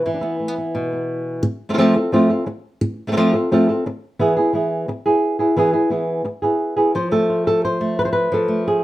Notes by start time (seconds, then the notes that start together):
0.06 E3 E4
0.14 D4
0.21 B3 E4
0.40 A3
0.48 B3
0.58 B3
0.75 B2
0.93 B3
1.43 muted nylon-string guitar stroke
1.69 A3 C4 F4 A4
1.73 A3 C4 F4 A4
1.78 F3 A3 C4 F4 A4
1.96 C4 F4 A4
2.12 F3 A3 C4 F4 A4
2.30 C4 F4 A4
2.46 muted nylon-string guitar stroke
2.81 muted nylon-string guitar stroke
3.07 A3 C4 F4 A4
3.12 A3 C4 F4 A4
3.17 F3 A3 C4 F4 A4
3.33 C4 F4 A4
3.51 F3 A3 C4 F4 A4
3.69 C4 F4 A4
3.86 muted nylon-string guitar stroke
4.19 E3 B3 E4 G#4
4.37 B3 E4 G#4
4.53 E3 B3 E4 G#4
4.88 muted nylon-string guitar stroke
5.06 B3 E4 G#4
5.39 B3 E4 G#4
5.57 E3 B3 E4 G#4
5.73 B3 E4 G#4
5.90 E3 B3 E4 G#4
6.24 muted nylon-string guitar stroke
6.42 B3 E4 G#4
6.77 B3 E4 G#4
6.95 F3 C5
7.11 A3 A4
7.30 F4
7.47 A4
7.65 C5
7.81 A3
7.99 B4
8.05 C5
8.13 B4
8.32 F3 A4
8.48 A3
8.68 G#4